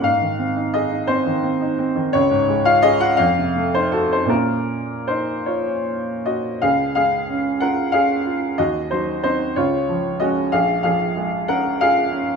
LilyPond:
\new Staff \with { instrumentName = "Upright piano" } { \time 6/8 \key bes \minor \tempo 4. = 58 << { f''4 ees''8 c''4. | des''8. f''16 ees''16 ges''16 f''8. c''16 a'16 c''16 | bes'4 <ees' c''>8 <f' des''>4 <ges' ees''>8 | \key des \major <aes' f''>8 <aes' f''>4 <bes' ges''>8 <aes' f''>4 |
<ges' ees''>8 <ees' c''>8 <ees' c''>8 <f' des''>4 <ges' ees''>8 | <aes' f''>8 <aes' f''>4 <bes' ges''>8 <aes' f''>4 | } \\ { aes,16 ees16 c'16 ees'16 aes'16 ees'16 c'16 ees16 c'16 ees'16 c'16 ees16 | des,16 aes,16 aes16 f'16 aes'16 f'16 f,16 c16 a16 ees'16 ges'16 ees'16 | <bes, bes des' f'>2. | des,8 aes8 des'8 f'8 des'8 f'8 |
ees,8 ges8 c'8 des,8 f8 <aes des'>8 | bes,,8 f8 aes8 des'8 f'8 des'8 | } >> }